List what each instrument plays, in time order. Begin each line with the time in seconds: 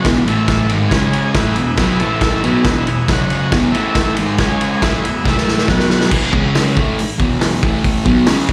0.04 distorted electric guitar E2 B2 E3, kick, snare, ride
0.25 distorted electric guitar A2 E3 A3, transistor combo organ E4 A4 E5, ride
0.48 kick, snare, ride
0.69 distorted electric guitar G#2 D#3 G#3, ride
0.88 distorted electric guitar C#3, transistor combo organ G#4 C#5 G#5, kick, snare, ride
0.93 distorted electric guitar G#3 C#4
1.13 ride
1.34 distorted electric guitar A2 E3 A3, transistor combo organ G#4 B4 E5, kick, snare, ride
1.56 distorted electric guitar E2 B2, ride
1.77 distorted electric guitar B2 F#3 B3, kick, snare, ride
1.98 distorted electric guitar A2, transistor combo organ E4 A4 E5, ride
2.02 distorted electric guitar E3 A3
2.21 kick, snare, ride
2.44 distorted electric guitar B2 F#3 B3, transistor combo organ G#4 B4 E5, ride
2.65 distorted electric guitar E2 B2 E3, kick, snare, ride
2.87 distorted electric guitar E2 B2, ride
3.08 distorted electric guitar F#2 C#3 F#3, transistor combo organ F#4 C#5, kick, snare, ride
3.13 transistor combo organ F#5
3.30 ride
3.52 distorted electric guitar E2 B2 E3, kick, snare, ride
3.72 distorted electric guitar A2 E3 A3, transistor combo organ E4 A4 E5, ride
3.95 kick, snare, ride
4.17 distorted electric guitar G#2 D#3 G#3, ride
4.38 distorted electric guitar C#3 G#3 C#4, transistor combo organ G#4 C#5 G#5, kick, snare, ride
4.61 ride
4.82 distorted electric guitar A2 E3 A3, transistor combo organ G#4 B4 E5, kick, snare, ride
5.03 distorted electric guitar E2 B2, ride
5.24 distorted electric guitar A2 E3 A3, transistor combo organ E4, kick, snare
5.29 transistor combo organ A4 E5
5.37 snare
5.48 snare
5.58 snare
5.68 distorted electric guitar B2 F#3 B3, transistor combo organ F#4 B4 F#5, kick, snare
5.79 snare
5.90 snare
6.00 snare
6.11 distorted electric guitar E2 B2 E3, kick, crash
6.33 distorted electric guitar C#3 G#3 C#4, kick
6.55 snare, open hi-hat
6.77 distorted electric guitar A2 E3 A3, kick
6.99 muted distorted electric guitar stroke, open hi-hat
7.18 distorted electric guitar E2 B2 E3, kick
7.41 snare, open hi-hat
7.63 distorted electric guitar A2 E3 A3, kick
7.84 kick, open hi-hat
8.05 distorted electric guitar B2 F#3 B3, kick
8.26 distorted electric guitar C#3 G#3 C#4, snare, open hi-hat
8.49 distorted electric guitar E2 B2, kick